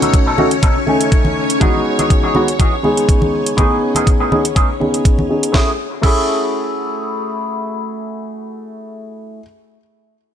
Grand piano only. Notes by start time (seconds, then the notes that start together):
Already playing: A3 C#4 D#4 F#4
0.38 A3 C#4 D#4 F#4
0.87 A3 C#4 D#4 G#5
1.60 G#3 B3 D#4 F#4
2.35 G#3 B3 D#4 F#4
2.83 G#3 B3 D#4 G#4
3.57 B3 C#4 D#4 G#4
4.31 B3 C#4 D#4 G#4
4.80 B3 C#4 D#4 G#4
5.29 B3 C#4 D#4 G#4
5.53 A3 C#4 E4 G#4
6.02 A3 C#4 E4 G#4